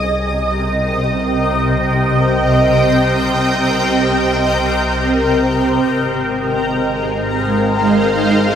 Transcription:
0.00 5.80 C2 medium
0.00 5.84 C3 medium
0.00 8.55 C4 medium
0.00 8.55 A#4 medium
0.00 8.44 D#5 medium
0.00 8.55 G5 medium
5.85 8.55 G#1 medium
5.85 8.55 G#3 medium
5.91 8.55 D#4 medium
6.09 8.55 C5 medium
6.14 8.55 F5 medium

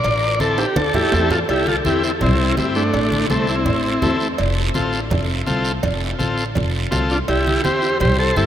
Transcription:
0.00 0.39 D5 loud
0.00 long guiro medium
0.04 0.62 A1 loud
0.04 cowbell loud
0.39 0.65 C4 medium
0.39 0.66 E4 medium
0.39 0.66 A4 medium
0.39 0.58 A4 loud
0.39 high conga medium
0.39 short guiro medium
0.58 0.76 G4 medium
0.58 high timbale medium
0.58 short guiro medium
0.76 0.91 E2 medium
0.76 0.94 A4 medium
0.76 cowbell medium
0.76 high conga loud
0.76 high timbale medium
0.76 long guiro medium
0.94 1.29 E4 medium
0.94 1.33 G4 loud
0.94 1.30 A4 loud
0.94 low conga medium
0.94 low timbale medium
1.12 1.42 E2 loud
1.12 1.38 C4 medium
1.12 1.38 E4 medium
1.12 1.39 A4 medium
1.12 low timbale medium
1.12 short guiro medium
1.30 1.39 F4 medium
1.30 1.40 A4 loud
1.30 low conga medium
1.30 low timbale medium
1.30 short guiro medium
1.49 1.78 C2 medium
1.49 1.67 E4 medium
1.49 1.69 G4 loud
1.49 cowbell loud
1.49 long guiro medium
1.67 1.76 F4 medium
1.67 1.77 A4 loud
1.67 high conga medium
1.85 2.24 E2 medium
1.85 2.11 C4 medium
1.85 2.11 E4 medium
1.85 2.03 E4 medium
1.85 2.11 G4 medium
1.85 2.03 G4 medium
1.85 high conga medium
1.85 short guiro medium
2.03 2.12 C4 medium
2.03 2.12 E4 medium
2.03 short guiro medium
2.21 2.51 C2 loud
2.21 2.55 C4 medium
2.21 2.56 E4 loud
2.21 cowbell medium
2.21 low conga medium
2.21 long guiro medium
2.57 2.87 G2 medium
2.57 2.83 C4 medium
2.57 2.83 E4 medium
2.57 2.84 G4 medium
2.57 high conga medium
2.57 low timbale medium
2.57 short guiro medium
2.75 3.26 A3 medium
2.75 3.26 D4 medium
2.75 short guiro medium
2.94 3.23 A1 loud
2.94 cowbell loud
2.94 long guiro medium
3.12 high conga medium
3.30 3.67 C2 medium
3.30 3.47 A3 medium
3.30 3.55 C4 medium
3.30 3.48 C4 medium
3.30 3.55 E4 medium
3.30 3.56 A4 medium
3.30 high conga medium
3.30 short guiro medium
3.47 4.17 C4 medium
3.47 4.17 E4 medium
3.47 short guiro medium
3.66 3.95 A1 loud
3.66 cowbell medium
3.66 low conga medium
3.66 long guiro medium
4.02 4.32 E2 medium
4.02 4.28 C4 loud
4.02 4.28 E4 medium
4.02 4.28 A4 loud
4.02 high conga medium
4.02 low conga medium
4.02 low timbale medium
4.02 short guiro medium
4.20 short guiro medium
4.38 4.68 F1 loud
4.38 cowbell loud
4.38 long guiro medium
4.74 5.13 A1 medium
4.74 5.00 C4 medium
4.74 5.00 F4 medium
4.74 5.00 A4 medium
4.74 high conga medium
4.74 short guiro medium
4.93 short guiro medium
5.10 5.40 F1 loud
5.10 cowbell medium
5.10 low conga medium
5.10 long guiro medium
5.46 5.76 C2 medium
5.46 5.72 C4 medium
5.46 5.72 F4 medium
5.46 5.73 A4 loud
5.46 high conga medium
5.46 short guiro medium
5.65 short guiro medium
5.83 6.12 F1 loud
5.83 cowbell loud
5.83 low conga medium
5.83 long guiro medium
6.18 6.57 A1 medium
6.18 6.44 C4 medium
6.18 6.44 F4 medium
6.18 6.45 A4 medium
6.18 high conga medium
6.18 short guiro medium
6.38 short guiro medium
6.55 6.85 F1 loud
6.55 cowbell medium
6.55 low conga medium
6.55 long guiro medium
6.91 7.21 C2 medium
6.91 7.17 C4 medium
6.91 7.17 F4 medium
6.91 7.17 A4 loud
6.91 high conga medium
6.91 low timbale medium
6.91 short guiro medium
7.10 7.19 D4 medium
7.10 7.19 F4 medium
7.10 short guiro medium
7.28 7.57 C2 medium
7.28 7.62 E4 medium
7.28 7.62 G4 loud
7.28 cowbell loud
7.28 long guiro medium
7.47 high conga medium
7.64 8.02 E2 medium
7.64 7.89 C4 medium
7.64 7.90 E4 medium
7.64 7.98 G4 medium
7.64 7.90 G4 medium
7.64 7.98 C5 loud
7.64 high conga medium
7.64 short guiro medium
7.82 short guiro medium
8.00 8.29 C2 loud
8.00 8.18 G4 medium
8.00 8.17 C5 loud
8.00 cowbell medium
8.00 low conga medium
8.00 long guiro medium
8.19 8.36 A4 medium
8.19 8.37 C5 loud
8.36 8.46 G2 medium
8.36 8.46 C4 medium
8.36 8.46 E4 medium
8.36 8.46 G4 medium
8.36 8.46 A4 loud
8.36 high conga medium
8.36 short guiro medium

